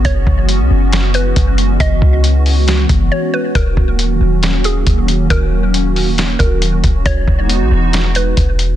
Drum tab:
HH |x-x-xxxx|x-xoxx--|x-x-xxxx|x-xoxxxx|
SD |----o---|----o---|----o---|----o---|
BD |oo----o-|oo---o--|oo----o-|o----o-o|

HH |x-x-xxxx|
SD |----o---|
BD |oo----o-|